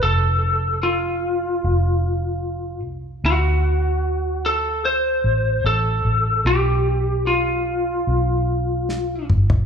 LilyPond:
<<
  \new Staff \with { instrumentName = "Lead electric guitar" } { \time 4/4 \key d \dorian \tempo 4 = 75 a'4 f'2~ f'8 r8 | fis'4. a'8 c''4 a'4 | g'4 f'2~ f'8 r8 | }
  \new Staff \with { instrumentName = "Fingered electric bass" } { \clef bass \time 4/4 \key d \dorian f,,2 f,,4. c,8 | d,2~ d,8 a,,8 a,,8 a,,8 | b,,2 b,,4. g,,8 | }
  \new DrumStaff \with { instrumentName = "Drums" } \drummode { \time 4/4 r4 r4 r4 r4 | r4 r4 r4 r4 | r4 r4 r4 sn8 toml16 tomfh16 | }
>>